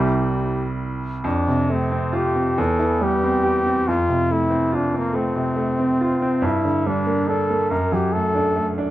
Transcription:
Already playing: C2 G3 C4 E4 G4
1.24 F2 D4
1.48 C3
1.70 A3 C4
1.92 C4
2.13 F4 G4
2.35 C4
2.58 E2 A4
2.79 E3
3.01 G3 G4
3.23 C4
3.44 G4
3.66 C4
3.88 F2 F4
4.09 C3
4.31 A3 E4
4.50 C4
4.72 D4 F4
4.94 A#3 C4
5.14 A3 C4
5.36 C3
5.56 A3
5.79 C4
6.01 F4
6.22 C4
6.42 G2 E4
6.65 D3
6.87 G3 D4
7.07 A#3
7.28 D4 A4
7.50 A#3
7.71 F#2 A#4
7.92 F#3 G4
8.13 A3 A4
8.35 D4
8.56 A3
8.78 D4

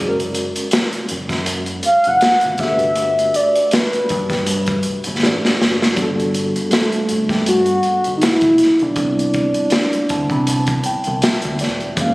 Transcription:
Already playing: F#1 G#3 C#4
0.00 F#4 G#4
0.08 A#4
0.20 closed hi-hat
0.34 closed hi-hat
0.56 closed hi-hat
0.71 snare, closed hi-hat
0.93 closed hi-hat
1.09 F#1, closed hi-hat
1.29 F#2, kick, snare, closed hi-hat
1.46 closed hi-hat
1.66 closed hi-hat
1.83 F5, muted picked electric bass stroke, closed hi-hat
2.04 F#1 F#5, closed hi-hat
2.21 muted picked electric bass stroke, snare, closed hi-hat
2.41 G#1, closed hi-hat
2.58 G1 A3 D4 F#4 E5, kick, snare, closed hi-hat
2.63 G4 A4
2.71 B4
2.79 closed hi-hat
2.96 closed hi-hat
3.19 closed hi-hat
3.34 D5, closed hi-hat
3.55 closed hi-hat
3.71 B4, snare, closed hi-hat
3.93 closed hi-hat
4.09 G2, kick, closed hi-hat
4.30 G2, kick, snare, closed hi-hat
4.46 closed hi-hat
4.66 kick, closed hi-hat
4.83 muted picked electric bass stroke, closed hi-hat
5.04 G1, closed hi-hat
5.23 A1 A3 D4 F#4 G4 D5, snare
5.45 snare
5.61 F#1, snare
5.82 snare
5.96 G1 G3 B3 D4, kick, closed hi-hat
6.01 F#4 A4
6.20 closed hi-hat
6.34 closed hi-hat
6.56 closed hi-hat
6.68 G#3, closed hi-hat
6.73 A3, snare
6.92 closed hi-hat
7.09 G1, closed hi-hat
7.29 G2, kick, snare, closed hi-hat
7.46 F#4, closed hi-hat
7.66 closed hi-hat
7.83 muted picked electric bass stroke, closed hi-hat
8.04 G1, closed hi-hat
8.17 D#4
8.21 E4, muted picked electric bass stroke, snare, closed hi-hat
8.41 B1, kick, closed hi-hat
8.58 snare, closed hi-hat
8.79 B1 D4, closed hi-hat
8.96 C2 G3 B3 C4, kick, closed hi-hat
9.00 D4 E4
9.19 closed hi-hat
9.34 kick, closed hi-hat
9.54 closed hi-hat
9.70 snare, closed hi-hat
9.93 closed hi-hat
10.09 D2 A5, kick, closed hi-hat
10.30 C3 B5, kick, closed hi-hat
10.47 A5, closed hi-hat
10.67 kick, closed hi-hat
10.84 G5, muted picked electric bass stroke, closed hi-hat
11.04 C2, closed hi-hat
11.22 E5, snare, closed hi-hat
11.42 D2, closed hi-hat
11.59 E1 D5, snare, closed hi-hat
11.80 closed hi-hat
11.95 F#1 F#3 G#3 A#3, kick, closed hi-hat
12.00 C#4 F5

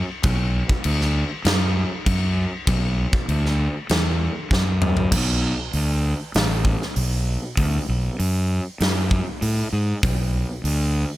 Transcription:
0.23 B1, kick, crash
0.69 kick
0.84 D2, crash
1.01 snare
1.45 F#2, snare, crash
2.06 F#2, kick, crash
2.67 B1, kick, crash
3.13 kick
3.28 D2, crash
3.46 snare
3.89 E2, snare, crash
4.51 F#2, kick, snare
4.82 mid tom
4.97 floor tom
5.12 B1, kick, crash
5.73 D2, open hi-hat
6.34 A1, snare, open hi-hat
6.65 kick
6.82 snare
6.96 B1, open hi-hat
7.57 D2, kick, open hi-hat
7.88 B1
8.19 F#2, open hi-hat
8.80 F#2, snare, open hi-hat
9.11 kick
9.42 A2, open hi-hat
9.72 G#2
10.03 B1, kick, open hi-hat
10.64 D2, open hi-hat

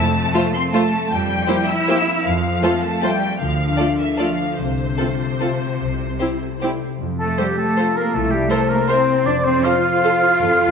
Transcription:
Already playing: F2 F3 A3
0.00 A5
0.15 C4
0.31 A3 F4 A4 C5
0.54 C4 A#4 C6
0.72 A3 F4 A4 C5 A5
0.93 C4
1.11 F2 F3 G3 G5
1.29 C4
1.48 A#3 E4 G4 A#4 C5
1.68 E4 C5 E6
1.87 A#3 E4 G4 A#4 C5
2.07 C4
2.25 F2 F3 F5
2.43 C4
2.61 A3 F4 A4 C5
2.82 A3 A#4 A5
3.02 G3 A3 F4 A4 C5 G5
3.21 C4
3.40 D2 D3 F3 F5
3.59 D4
3.77 A3 F4 A4 D5
3.99 E3 A#4 E5
4.17 F3 A3 F4 A4 D5 F5
4.40 D4
4.58 C2 C3 C5
4.78 A3
4.98 A3 C4 F4 A4
5.21 G4
5.40 A3 C4 F4 A4
5.61 A3
5.80 C2 C3
6.00 G3
6.18 G3 C4 E4 G4 C5
6.40 A4
6.61 G3 C4 E4 G4 C5
6.82 G3
7.00 F2 F3
7.19 A3 C4 A4 A5
7.37 G3 G4 A4 C5 F5 G5
7.58 A3 A4 C5 A5
7.76 F4 A4 C5 F5
7.95 A#3 C4 A#4 A#5
8.13 C2 C3 A3 E4 A4 A5
8.31 G3 A#3 G4 G5
8.49 A3 E4 A4 A#4 C5 E5 A5
8.68 A#3 A#4 A#5
8.88 C4 E4 A#4 C5 E5 C6
9.07 A#3
9.25 F2 F3 D4 D5 D6
9.44 C4 C5 C6
9.64 F4 A4 C5 F5 F6
9.85 C5
10.04 A4 C5 F5
10.40 F2 F3 A4
10.60 A3

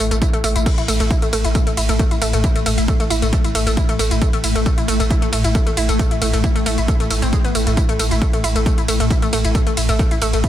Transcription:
Already playing: A2 A3
0.00 A1
0.11 A1 A3, closed hi-hat, tambourine
0.22 E4, kick, closed hi-hat, tambourine
0.33 A1 A3, closed hi-hat, tambourine
0.44 A1 A3, open hi-hat, tambourine
0.56 A1 E4, closed hi-hat, tambourine
0.66 A2 A3, kick, closed hi-hat, crash, tambourine
0.78 A1 E4, closed hi-hat, tambourine
0.88 A1 A3, open hi-hat, ride, tambourine
1.00 A1 A3, closed hi-hat, tambourine
1.11 E4, kick, closed hi-hat, tambourine
1.22 A1 A3, closed hi-hat, tambourine
1.33 A1 A3, open hi-hat, ride, tambourine
1.45 A1 E4, closed hi-hat, tambourine
1.55 A3, kick, closed hi-hat, tambourine
1.67 A1 A3, closed hi-hat, tambourine
1.77 A1 E4, open hi-hat, ride, tambourine
1.89 A1 A3, closed hi-hat, tambourine
1.99 A3, kick, closed hi-hat, tambourine
2.11 A1 E4, closed hi-hat, tambourine
2.22 A1 A3, open hi-hat, ride, tambourine
2.33 A1 A3, closed hi-hat, tambourine
2.44 E4, kick, closed hi-hat, tambourine
2.56 A1 A3, closed hi-hat, tambourine
2.66 A1 A3, open hi-hat, ride, tambourine
2.78 A1 E4, closed hi-hat, tambourine
2.88 A3, kick, closed hi-hat, tambourine
3.00 A1 A3, closed hi-hat, tambourine
3.10 A1 E4, open hi-hat, ride, tambourine
3.22 A1 A3, closed hi-hat, tambourine
3.33 A3, kick, closed hi-hat, tambourine
3.44 A1 E4, closed hi-hat, tambourine
3.55 A1 A3, open hi-hat, ride, tambourine
3.67 A1 A3, closed hi-hat, tambourine
3.77 E4, kick, closed hi-hat, tambourine
3.89 A1 A3, closed hi-hat, tambourine
3.99 A1 A3, open hi-hat, ride, tambourine
4.11 A1 E4, closed hi-hat, tambourine
4.21 A3, kick, closed hi-hat, tambourine
4.33 A1 A3, closed hi-hat, tambourine
4.44 A1 E4, open hi-hat, ride, tambourine
4.55 A1 A3, closed hi-hat, tambourine
4.66 A3, kick, closed hi-hat, tambourine
4.78 A1 E4, closed hi-hat, tambourine
4.88 A1 A3, open hi-hat, ride, tambourine
5.00 A1 A3, closed hi-hat, tambourine
5.10 E4, kick, closed hi-hat, tambourine
5.22 A1 A3, closed hi-hat, tambourine
5.32 A1 A3, open hi-hat, ride, tambourine
5.44 A1 E4, closed hi-hat, tambourine
5.55 A3, kick, closed hi-hat, tambourine
5.67 A1 A3, closed hi-hat, tambourine
5.77 A1 E4, open hi-hat, ride, tambourine
5.89 A1 A3, closed hi-hat, tambourine
5.99 A3, kick, closed hi-hat, tambourine
6.11 A1 E4, closed hi-hat, tambourine
6.22 A1 A3, open hi-hat, ride, tambourine
6.33 A1 A3, closed hi-hat, tambourine
6.44 E4, kick, closed hi-hat, tambourine
6.55 A1 A3, closed hi-hat, tambourine
6.66 A1 A3, open hi-hat, ride, tambourine
6.78 A1 E4, closed hi-hat, tambourine
6.88 A3, kick, closed hi-hat, tambourine
7.00 A1 A3, closed hi-hat, tambourine
7.10 A1 A3, open hi-hat, ride, tambourine
7.22 A1 C4, closed hi-hat, tambourine
7.33 G#3, kick, closed hi-hat, tambourine
7.44 A1 B3, closed hi-hat, tambourine
7.55 A1 A3, open hi-hat, ride, tambourine
7.67 A1 A3, closed hi-hat, tambourine
7.77 E4, kick, closed hi-hat, tambourine
7.89 A1 A3, closed hi-hat, tambourine
7.99 A1 A3, open hi-hat, ride, tambourine
8.11 A1 E4, closed hi-hat, tambourine
8.22 A3, kick, closed hi-hat, tambourine
8.33 A1 A3, closed hi-hat, tambourine
8.44 A1 E4, open hi-hat, ride, tambourine
8.56 A1 A3, closed hi-hat, tambourine
8.66 A3, kick, closed hi-hat, tambourine
8.78 A1 E4, closed hi-hat, tambourine
8.88 A1 A3, open hi-hat, ride, tambourine
9.00 A1 A3, closed hi-hat, tambourine
9.10 E4, kick, closed hi-hat, tambourine
9.22 A1 A3, closed hi-hat, tambourine
9.33 A1 A3, open hi-hat, ride, tambourine
9.45 A1 E4, closed hi-hat, tambourine
9.55 A3, kick, closed hi-hat, tambourine
9.67 A1 A3, closed hi-hat, tambourine
9.77 A1 E4, open hi-hat, ride, tambourine
9.89 A1 A3, closed hi-hat, tambourine
9.99 A3, kick, closed hi-hat, tambourine
10.11 A1 E4, closed hi-hat, tambourine
10.22 A1 A3, open hi-hat, ride, tambourine
10.33 A1 A3, closed hi-hat, tambourine
10.44 E4, kick, closed hi-hat, tambourine

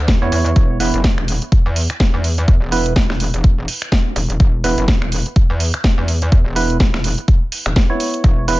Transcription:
Already playing: D2
0.08 kick, snare, closed hi-hat
0.22 E2 B3 E4 C#5
0.32 E2, open hi-hat
0.46 closed hi-hat
0.56 E1, kick, closed hi-hat
0.80 B3 E4 B4, open hi-hat
0.94 F#1, closed hi-hat
1.04 kick, snare, closed hi-hat
1.18 E1, finger snap
1.28 open hi-hat
1.42 closed hi-hat
1.52 kick, closed hi-hat
1.66 E2
1.76 open hi-hat
1.90 finger snap, closed hi-hat
2.00 kick, snare, closed hi-hat
2.14 E2
2.24 open hi-hat
2.38 closed hi-hat
2.48 E2, kick, closed hi-hat
2.62 E1
2.72 B3 E4 B4, open hi-hat
2.86 closed hi-hat
2.96 kick, snare, closed hi-hat
3.10 E1, finger snap, snare
3.20 open hi-hat
3.34 E1, closed hi-hat
3.44 kick, closed hi-hat
3.68 open hi-hat
3.82 finger snap, closed hi-hat
3.92 kick, snare, closed hi-hat
4.16 E1, open hi-hat
4.30 E1, closed hi-hat
4.40 E1, kick, closed hi-hat
4.64 B3 E4 B4, open hi-hat
4.78 F#1, closed hi-hat
4.88 kick, snare, closed hi-hat
5.02 E1, finger snap
5.12 open hi-hat
5.26 closed hi-hat
5.36 kick, closed hi-hat
5.50 E2
5.60 open hi-hat
5.74 finger snap, closed hi-hat
5.84 kick, snare, closed hi-hat
5.98 E2
6.08 open hi-hat
6.22 closed hi-hat
6.32 E2, kick, closed hi-hat
6.46 E1
6.56 B3 E4 B4, open hi-hat
6.70 closed hi-hat
6.80 kick, snare, closed hi-hat
6.94 E1, finger snap, snare
7.04 open hi-hat
7.18 closed hi-hat
7.28 kick, closed hi-hat
7.52 open hi-hat
7.66 E1, finger snap, closed hi-hat
7.76 kick, snare, closed hi-hat
7.90 B3 E4 C#5
8.00 open hi-hat
8.14 closed hi-hat
8.24 E1, kick, closed hi-hat
8.48 B3 E4 B4, open hi-hat

